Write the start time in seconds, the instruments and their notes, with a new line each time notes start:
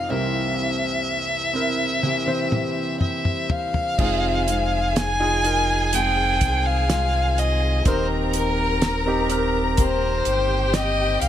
Already playing: steel-string acoustic guitar G#3 C4 F4, grand piano D#4 F4 G#4, violin F5
0.09 grand piano C2 C3 C4 E4 A#4, steel-string acoustic guitar C3 E3 A#3 C4 G4, violin E5
1.53 grand piano C4 E4 A#4
2.02 steel-string acoustic guitar C3 E3 A#3 C4 G4, high tom
2.26 grand piano E3 C4 C5
2.52 mid tom
3.01 violin E5, mid tom
3.25 mid tom
3.50 violin F5, floor tom
3.74 floor tom
3.98 sub bass F1, steel-string acoustic guitar F2 C3 D#3 G#3 C4 F4, grand piano D#4 F4 G#4, violin section G#4 G#5, kick, crash
4.47 steel-string acoustic guitar D#3 G#3 C4 F4, closed hi-hat
4.96 violin G#5, snare, closed hi-hat
5.20 grand piano D#4 F4 G#4
5.44 grand piano D#4 F4 A#4, closed hi-hat
5.92 steel-string acoustic guitar D#3 G#3 C4 F4, violin G5, closed hi-hat
6.41 sub bass C2, kick, closed hi-hat
6.66 violin F5
6.89 steel-string acoustic guitar D#3 G#3 C4 F4, snare, closed hi-hat
7.38 violin D#5, closed hi-hat
7.84 sub bass D#1, steel-string acoustic guitar D#3 A#3 C4 G4, grand piano D#3 C4 D#4 A#4, violin section A#4 A#5, violin C5, kick, closed hi-hat
8.34 violin A#4, closed hi-hat
8.82 snare, closed hi-hat
9.06 grand piano C4 D#4 G4
9.29 grand piano C4 D#4 A#4, closed hi-hat
9.77 steel-string acoustic guitar D#3 A#3 C4 G4, violin C5, kick, closed hi-hat
10.25 sub bass G1, violin section G4 G5, closed hi-hat
10.73 steel-string acoustic guitar D#3 A#3 C4 G4, violin D#5, snare, closed hi-hat
11.21 sub bass C2, violin F5, closed hi-hat